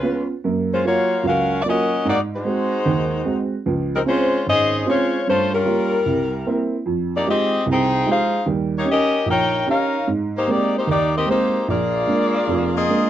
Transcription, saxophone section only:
0.00 0.28 G#3 medium
0.00 0.28 C#4 medium
0.00 0.28 F4 medium
0.00 0.28 B4 medium
0.74 0.85 G#3 medium
0.74 0.85 C#4 medium
0.74 0.85 F4 medium
0.74 0.85 C5 medium
0.87 1.23 A#3 medium
0.87 1.23 F4 medium
0.87 1.23 F#4 medium
0.87 1.23 C#5 medium
1.27 1.62 C#4 medium
1.27 1.62 F#4 medium
1.27 1.61 A#4 medium
1.27 1.61 F5 loud
1.63 1.66 D5 medium
1.69 2.07 C#4 medium
1.69 2.07 F#4 medium
1.69 2.07 A#4 medium
1.69 2.07 D#5 medium
2.09 2.20 A#3 medium
2.09 2.20 D#4 medium
2.09 2.20 F#4 medium
2.09 2.21 D5 loud
2.36 3.50 G#3 medium
2.36 3.50 D#4 medium
2.36 3.50 F#4 medium
2.36 3.50 C5 medium
3.96 4.01 G3 medium
3.96 4.01 C4 medium
3.96 4.01 D#4 medium
3.96 4.01 A#4 medium
4.08 4.44 G#3 medium
4.08 4.44 C#4 medium
4.08 4.44 F4 medium
4.08 4.45 C5 medium
4.50 4.85 C#4 medium
4.50 4.85 G#4 medium
4.50 4.85 C5 medium
4.50 4.85 D#5 loud
4.90 5.25 G#3 medium
4.90 5.25 F4 medium
4.90 5.25 C5 medium
4.90 5.25 C#5 medium
5.29 5.52 A3 medium
5.29 5.52 C#4 medium
5.29 5.52 F4 medium
5.29 5.52 C5 loud
5.54 6.70 G3 medium
5.54 6.03 C#4 medium
5.54 6.03 F4 medium
5.54 6.70 A#4 medium
7.16 7.28 A#3 medium
7.16 7.27 D#4 medium
7.16 7.27 G4 medium
7.16 7.27 D5 medium
7.31 7.66 C4 medium
7.31 7.66 G4 medium
7.31 7.66 G#4 medium
7.31 7.66 D#5 medium
7.72 8.09 D#4 medium
7.72 8.10 G#4 medium
7.72 8.10 C5 medium
7.72 8.09 G5 loud
8.11 8.47 D#4 medium
8.11 8.46 G#4 medium
8.11 8.46 C5 medium
8.11 8.46 F5 loud
8.78 8.89 A#3 medium
8.78 8.89 D#4 medium
8.78 8.89 G4 medium
8.78 8.89 C#5 medium
8.91 9.27 C#4 medium
8.91 9.27 G4 medium
8.91 9.27 A#4 medium
8.91 9.27 D#5 medium
9.31 9.66 D#4 medium
9.31 9.66 A#4 medium
9.31 9.66 C#5 medium
9.31 9.66 G5 loud
9.71 10.09 D#4 medium
9.71 10.09 A#4 medium
9.71 10.09 C#5 medium
9.71 10.09 F5 loud
10.38 10.48 A#3 medium
10.38 10.48 D#4 medium
10.38 10.48 G4 medium
10.38 10.49 C5 medium
10.51 10.76 A#3 medium
10.51 10.76 D#4 medium
10.51 10.76 G4 medium
10.51 10.76 D5 loud
10.77 10.89 A#3 medium
10.77 10.89 D#4 medium
10.77 10.89 G4 medium
10.77 10.88 C5 medium
10.91 11.14 A#3 medium
10.91 11.14 D#4 medium
10.91 11.14 G4 medium
10.91 11.14 D5 medium
11.17 11.28 C4 medium
11.17 11.28 G4 medium
11.17 11.28 A#4 medium
11.17 11.28 D#5 medium
11.31 11.67 A#3 medium
11.31 11.67 D#4 medium
11.31 11.67 G4 medium
11.31 11.67 C5 medium
11.70 12.76 A#3 medium
11.70 12.76 F4 medium
11.70 12.75 G#4 medium
11.70 12.89 D5 medium
12.76 13.10 A#3 medium
12.76 13.10 F4 medium
12.76 13.10 G#4 medium
12.76 13.10 D#5 loud

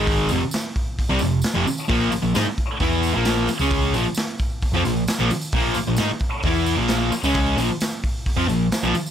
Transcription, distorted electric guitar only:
0.00 0.29 G#2 medium
0.00 0.29 D#3 medium
0.00 0.30 G#3 medium
0.31 0.41 F2 medium
0.31 0.41 C3 loud
1.09 1.20 C3 loud
1.09 1.20 G3 medium
1.20 1.39 F2 medium
1.20 1.39 C3 medium
1.54 1.65 F2 medium
1.54 1.65 C3 loud
1.67 muted distorted electric guitar stroke medium
1.88 2.10 A#2 medium
1.88 2.11 F3 medium
1.88 2.12 A#3 loud
2.12 muted distorted electric guitar stroke medium
2.22 2.34 A#2 medium
2.22 2.34 F3 medium
2.34 2.45 G#3 medium
2.34 2.45 D#4 loud
2.45 muted distorted electric guitar stroke medium
2.81 3.14 E3 medium
2.81 3.14 B3 loud
2.81 3.15 E4 loud
3.14 3.48 A#2 medium
3.14 3.48 F3 medium
3.14 3.48 A#3 loud
3.49 muted distorted electric guitar stroke medium
3.60 3.93 C#3 medium
3.60 3.93 G#3 medium
3.60 3.94 C#4 loud
3.95 4.05 A#2 medium
3.95 4.05 F3 loud
4.74 4.84 F3 medium
4.74 4.85 C4 loud
4.85 5.03 A#2 medium
4.85 5.03 F3 medium
5.19 5.30 A#2 medium
5.19 5.30 F3 loud
5.32 muted distorted electric guitar stroke medium
5.54 5.75 A#2 medium
5.54 5.76 F3 medium
5.54 5.77 A#3 loud
5.76 muted distorted electric guitar stroke medium
5.87 5.99 A#2 medium
5.87 5.98 F3 medium
5.98 6.09 G#3 medium
5.98 6.09 D#4 loud
6.10 muted distorted electric guitar stroke medium
6.45 6.76 E3 medium
6.45 6.77 B3 loud
6.45 6.78 E4 loud
6.77 7.11 A#2 medium
6.77 7.11 F3 loud
6.77 7.12 A#3 medium
7.12 muted distorted electric guitar stroke medium
7.24 7.56 C#3 medium
7.24 7.58 G#3 medium
7.24 7.58 C#4 loud
7.57 7.68 A#2 medium
7.57 7.69 F3 loud
8.37 8.47 F3 loud
8.37 8.48 C4 loud
8.48 8.67 A#2 medium
8.48 8.67 F3 medium
8.83 8.94 A#2 medium
8.83 8.95 F3 loud
8.95 muted distorted electric guitar stroke medium

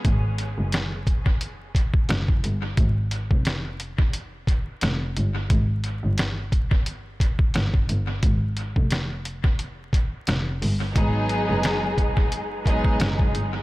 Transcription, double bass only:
0.05 0.49 G#1 medium
0.58 2.06 F#1 medium
2.10 2.38 F#1 loud
2.44 2.72 G1 medium
2.78 3.22 G#1 loud
3.31 4.78 F1 medium
4.83 5.11 F1 medium
5.17 5.45 G1 medium
5.50 5.95 G#1 loud
6.04 7.51 G1 medium
7.55 7.84 G1 loud
7.89 8.18 G1 medium
8.23 8.67 G#1 loud
8.76 10.24 F1 medium
10.28 10.56 F1 medium
10.62 10.91 G1 medium
10.96 11.40 G#1 loud
11.49 12.97 F#1 medium
13.01 13.29 F#1 medium
13.35 13.62 G1 medium

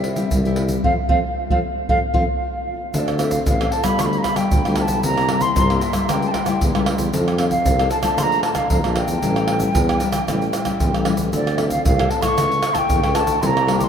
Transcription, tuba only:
0.00 0.24 C2 medium
0.32 0.76 C2 medium
0.84 0.94 F2 medium
1.09 1.20 F2 medium
1.50 1.60 F2 medium
1.89 1.99 F2 medium
2.14 2.25 F2 medium
2.94 3.39 D2 medium
3.47 3.69 A1 medium
3.99 4.21 D2 medium
4.52 4.63 D2 medium
4.65 4.87 D2 medium
4.89 5.01 B1 medium
5.04 5.49 C2 medium
5.57 5.79 C2 loud
6.09 6.31 C#2 medium
6.61 6.76 E2 medium
6.75 6.97 C#2 medium
6.98 7.10 E2 medium
7.13 7.58 F2 loud
7.66 7.88 C2 loud
8.18 8.41 A#1 medium
8.70 8.86 F2 medium
8.84 9.06 A#1 medium
9.07 9.20 E2 medium
9.23 9.68 A1 loud
9.75 9.98 E2 loud
10.28 10.50 A1 medium
10.81 10.96 E2 medium
10.94 11.16 A1 medium
11.17 11.30 A1 medium
11.33 11.77 D2 medium
11.85 12.08 C2 loud
12.38 12.60 C#2 medium
12.90 13.05 E2 medium
13.04 13.26 C#2 loud
13.27 13.39 D2 medium
13.42 13.87 C2 loud

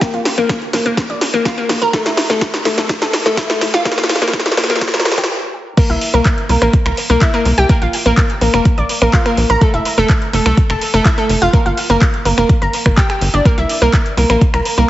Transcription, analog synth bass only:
0.14 0.21 A#1 medium
0.38 0.45 A#1 medium
0.73 0.81 A#1 medium
0.86 0.93 F1 medium
1.10 1.17 A#1 medium
1.34 1.41 A#1 medium
1.69 1.77 A#1 loud
1.82 1.89 A#1 medium
2.06 2.13 F1 medium
2.30 2.37 F1 medium
2.65 2.73 F1 medium
2.78 2.85 C2 medium
3.02 3.09 F1 medium
3.26 3.33 F1 medium
3.61 3.69 F1 loud
3.74 3.81 F1 medium
3.98 4.05 G1 medium
4.22 4.29 G1 medium
4.57 4.65 G1 medium
4.70 4.77 F1 medium
4.94 5.01 G1 medium
5.18 5.25 G2 medium
5.90 5.97 C2 medium
6.14 6.21 C2 medium
6.49 6.57 C2 medium
6.62 6.69 A#1 medium
6.86 6.93 C2 medium
7.10 7.17 C2 medium
7.45 7.53 C2 loud
7.58 7.65 C2 medium
7.82 7.89 A#1 medium
8.06 8.13 A#1 medium
8.41 8.49 A#1 medium
8.54 8.61 F1 medium
8.78 8.85 A#1 medium
9.02 9.09 A#1 medium
9.37 9.45 A#1 medium
9.50 9.57 A#1 medium
9.74 9.81 F1 medium
9.98 10.05 F1 medium
10.33 10.41 F1 medium
10.46 10.53 C2 medium
10.70 10.77 F1 medium
10.94 11.01 F1 medium
11.29 11.37 F1 loud
11.42 11.49 F1 medium
11.66 11.73 G1 medium
11.90 11.97 G1 medium
12.25 12.33 G1 medium
12.38 12.45 F1 medium
12.62 12.69 G1 medium
12.86 12.93 G1 medium
13.21 13.29 G1 loud
13.34 13.41 G1 medium
13.58 13.65 C2 medium
13.82 13.89 C2 medium
14.17 14.25 C2 medium
14.30 14.37 A#1 medium
14.54 14.61 C2 medium
14.78 14.85 C2 medium

